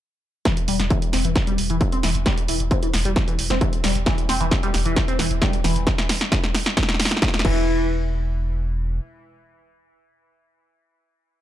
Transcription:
0.45 0.50 E3 medium
0.45 kick loud
0.45 snare soft
0.45 closed hi-hat medium
0.57 closed hi-hat medium
0.68 0.79 E1 loud
0.68 0.72 G3 loud
0.68 open hi-hat loud
0.80 0.90 E1 medium
0.80 snare soft
0.80 closed hi-hat medium
0.90 0.97 E3 medium
0.90 kick loud
0.90 closed hi-hat medium
1.02 closed hi-hat medium
1.13 1.24 E1 loud
1.13 1.17 C4 medium
1.13 snare soft
1.13 open hi-hat loud
1.25 1.35 E1 medium
1.25 1.29 E3 medium
1.25 closed hi-hat medium
1.36 kick loud
1.36 snare medium
1.36 closed hi-hat medium
1.47 1.51 G3 loud
1.47 closed hi-hat medium
1.58 1.69 E1 loud
1.58 open hi-hat loud
1.70 1.81 E1 medium
1.70 1.76 E3 medium
1.70 closed hi-hat medium
1.81 kick loud
1.81 closed hi-hat medium
1.92 1.96 C4 medium
1.92 closed hi-hat medium
2.03 2.14 E1 loud
2.03 2.08 E3 medium
2.03 snare medium
2.03 open hi-hat loud
2.15 2.26 E1 medium
2.15 closed hi-hat medium
2.26 2.30 G3 loud
2.26 kick loud
2.26 snare medium
2.26 closed hi-hat medium
2.38 closed hi-hat medium
2.48 2.59 E1 medium
2.48 2.55 E3 medium
2.48 open hi-hat loud
2.60 2.71 E1 medium
2.60 closed hi-hat medium
2.71 2.75 C4 medium
2.71 kick loud
2.71 closed hi-hat medium
2.83 2.87 E3 medium
2.83 closed hi-hat medium
2.93 3.05 E1 loud
2.93 snare medium
2.93 open hi-hat loud
3.05 3.16 E1 medium
3.05 3.09 G3 loud
3.05 closed hi-hat medium
3.16 kick loud
3.16 snare medium
3.16 closed hi-hat medium
3.28 3.34 E3 medium
3.28 closed hi-hat medium
3.39 3.50 E1 medium
3.39 open hi-hat loud
3.50 3.61 E1 medium
3.50 3.54 C4 medium
3.50 snare medium
3.50 closed hi-hat medium
3.61 3.65 E3 medium
3.61 kick loud
3.61 closed hi-hat medium
3.73 closed hi-hat medium
3.84 3.95 E1 loud
3.84 3.88 G3 loud
3.84 snare medium
3.84 open hi-hat loud
3.95 4.06 E1 medium
3.95 closed hi-hat medium
4.06 4.13 E3 medium
4.06 kick loud
4.06 snare medium
4.06 closed hi-hat medium
4.18 closed hi-hat medium
4.29 4.40 E1 loud
4.29 4.33 C4 medium
4.29 snare medium
4.29 open hi-hat loud
4.40 4.51 E1 medium
4.40 4.45 E3 medium
4.40 closed hi-hat medium
4.51 kick loud
4.51 snare medium
4.51 closed hi-hat medium
4.63 4.67 G3 medium
4.63 closed hi-hat medium
4.74 4.85 E1 loud
4.74 snare medium
4.74 open hi-hat loud
4.85 4.96 E1 medium
4.85 4.92 E3 medium
4.85 closed hi-hat medium
4.96 kick loud
4.96 snare medium
4.96 closed hi-hat medium
5.08 5.12 C4 medium
5.08 closed hi-hat medium
5.19 5.30 E1 loud
5.19 5.23 E3 medium
5.19 snare medium
5.19 open hi-hat loud
5.31 5.41 E1 medium
5.31 closed hi-hat medium
5.41 5.46 G3 loud
5.41 kick loud
5.41 snare medium
5.41 closed hi-hat medium
5.53 closed hi-hat medium
5.64 5.75 E1 loud
5.64 5.71 E3 medium
5.64 snare medium
5.64 open hi-hat loud
5.76 5.87 E1 medium
5.76 closed hi-hat medium
5.87 kick loud
5.87 snare medium
5.87 closed hi-hat medium
5.98 snare medium
5.98 closed hi-hat medium
6.09 snare loud
6.09 open hi-hat loud
6.21 snare medium
6.21 closed hi-hat medium
6.32 kick loud
6.32 snare loud
6.32 closed hi-hat medium
6.44 snare medium
6.44 closed hi-hat medium
6.55 snare medium
6.55 open hi-hat medium
6.66 snare medium
6.66 closed hi-hat medium
6.77 kick loud
6.77 snare loud
6.77 closed hi-hat medium
6.83 snare medium
6.89 snare medium
6.89 closed hi-hat medium
6.94 snare medium
7.00 snare loud
7.00 open hi-hat loud
7.05 snare medium
7.11 snare medium
7.11 closed hi-hat medium
7.17 snare medium
7.22 kick loud
7.22 snare loud
7.22 closed hi-hat medium
7.28 snare medium
7.34 snare medium
7.34 closed hi-hat medium
7.39 snare loud
7.45 8.99 E1 loud
7.45 7.87 E3 medium
7.45 kick loud
7.45 crash medium

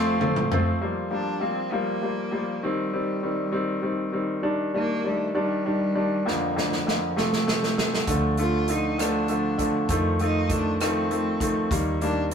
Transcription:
0.00 0.77 F1 medium
0.00 0.22 F2 medium
0.00 0.22 C3 medium
0.00 0.17 F3 medium
0.00 0.19 F3 medium
0.00 0.17 A3 medium
0.00 0.21 A3 medium
0.00 0.17 C4 medium
0.00 0.21 C4 medium
0.00 0.21 F4 medium
0.00 0.77 F4 medium
0.00 0.79 C5 medium
0.00 0.79 A5 medium
0.00 0.79 C6 medium
0.20 0.46 F3 medium
0.20 0.51 F3 medium
0.20 0.47 A3 medium
0.20 0.52 A3 medium
0.20 0.47 C4 medium
0.20 0.51 C4 medium
0.20 0.49 F4 medium
0.20 high tom medium
0.36 mid tom medium
0.50 0.77 F3 medium
0.50 0.82 F3 soft
0.50 0.77 A3 medium
0.50 0.82 A3 medium
0.50 0.82 C4 medium
0.50 0.78 C4 medium
0.50 0.81 F4 medium
0.50 mid tom medium
0.81 1.07 F3 medium
0.81 1.07 G3 medium
0.81 1.07 A#3 medium
1.11 1.37 F3 medium
1.11 1.37 G3 soft
1.11 1.37 A#3 medium
1.11 1.43 D4 medium
1.40 1.67 F3 soft
1.40 1.67 G3 soft
1.40 1.67 A#3 medium
1.40 1.73 C4 medium
1.72 1.98 F3 medium
1.72 1.98 G3 medium
1.72 2.64 A#3 medium
1.72 1.98 A#3 medium
2.02 2.28 F3 soft
2.02 2.28 G3 soft
2.02 2.28 A#3 medium
2.31 2.58 F3 medium
2.31 2.58 G3 soft
2.31 2.58 A#3 medium
2.63 2.89 D#3 medium
2.63 4.14 G3 medium
2.63 2.89 G3 medium
2.63 2.89 C4 medium
2.93 3.19 D#3 medium
2.93 3.19 G3 medium
2.93 3.19 C4 medium
3.23 3.49 D#3 medium
3.23 3.49 G3 soft
3.23 3.49 C4 medium
3.52 3.78 D#3 medium
3.52 3.79 G3 medium
3.52 3.79 C4 medium
3.82 4.09 D#3 medium
3.82 4.09 G3 medium
3.82 4.09 C4 medium
4.12 4.39 D#3 medium
4.12 4.39 G3 soft
4.12 4.39 C4 medium
4.43 4.69 D#3 medium
4.43 4.69 G3 medium
4.43 4.69 D4 medium
4.74 5.00 D#3 medium
4.74 5.00 G3 medium
4.74 5.10 A#3 medium
4.74 5.00 D4 medium
5.04 5.30 D#3 medium
5.04 5.30 G3 soft
5.04 5.31 D4 medium
5.08 5.37 A3 medium
5.34 5.61 D#3 medium
5.34 5.61 G3 medium
5.34 5.61 D4 medium
5.40 6.31 G3 medium
5.66 5.91 D#3 medium
5.66 5.91 G3 soft
5.66 5.91 D4 medium
5.95 6.21 D#3 medium
5.95 6.21 G3 medium
5.95 6.21 D4 medium
6.25 6.51 F2 medium
6.25 6.51 D3 medium
6.25 6.52 F3 medium
6.25 6.52 A#3 medium
6.25 snare soft
6.30 7.79 F3 medium
6.56 6.82 F2 medium
6.56 6.82 D3 medium
6.56 6.82 F3 medium
6.56 6.82 A#3 medium
6.56 snare medium
6.72 snare soft
6.87 7.12 F2 medium
6.87 7.12 D3 soft
6.87 7.12 F3 soft
6.87 7.13 A#3 medium
6.87 snare medium
7.16 7.43 C3 medium
7.16 7.42 F3 medium
7.16 7.43 A3 medium
7.16 snare medium
7.33 snare medium
7.47 7.73 C3 medium
7.47 7.73 F3 soft
7.47 7.73 A3 medium
7.47 snare medium
7.63 snare medium
7.78 8.03 C3 medium
7.78 8.03 F3 soft
7.78 8.04 A3 medium
7.78 snare medium
7.94 snare medium
8.07 9.85 D2 medium
8.07 8.33 D3 medium
8.07 8.34 F3 medium
8.07 8.34 A3 medium
8.07 kick medium
8.07 closed hi-hat medium
8.38 8.64 D3 medium
8.38 8.64 F3 medium
8.38 8.64 A3 medium
8.38 8.72 F4 medium
8.38 closed hi-hat soft
8.68 8.94 D3 medium
8.68 8.94 F3 soft
8.68 8.94 A3 medium
8.68 9.03 D#4 medium
8.68 closed hi-hat medium
8.98 9.24 D3 medium
8.98 9.25 F3 medium
8.98 9.25 A3 medium
8.98 9.91 D4 medium
8.98 cross-stick medium
8.98 closed hi-hat medium
9.28 9.55 D3 medium
9.28 9.55 F3 medium
9.28 9.55 A3 medium
9.28 closed hi-hat soft
9.58 9.84 D3 medium
9.58 9.85 F3 medium
9.58 9.85 A3 medium
9.58 kick medium
9.58 closed hi-hat medium
9.89 11.67 F2 medium
9.89 10.15 D#3 medium
9.89 10.16 F3 medium
9.89 10.16 A3 medium
9.89 kick medium
9.89 closed hi-hat medium
10.19 10.46 D#3 medium
10.19 10.46 F3 medium
10.19 10.46 A3 medium
10.19 10.52 D#4 medium
10.19 closed hi-hat soft
10.49 10.76 D#3 medium
10.49 10.76 F3 soft
10.49 10.76 A3 medium
10.49 10.81 D4 medium
10.49 kick medium
10.49 closed hi-hat medium
10.81 11.06 D#3 medium
10.81 11.07 F3 medium
10.81 11.07 A3 medium
10.81 11.68 C4 medium
10.81 cross-stick medium
10.81 closed hi-hat medium
11.11 11.37 D#3 medium
11.11 11.37 F3 medium
11.11 11.37 A3 medium
11.11 closed hi-hat soft
11.40 11.67 D#3 medium
11.40 11.67 F3 medium
11.40 11.67 A3 medium
11.40 kick medium
11.40 closed hi-hat medium
11.71 12.34 D#2 medium
11.71 11.97 D#3 medium
11.71 11.97 G3 medium
11.71 11.97 A#3 medium
11.71 kick medium
11.71 closed hi-hat medium
12.01 12.27 D#3 medium
12.01 12.28 G3 medium
12.01 12.28 A#3 medium
12.01 12.30 D4 medium
12.01 closed hi-hat soft

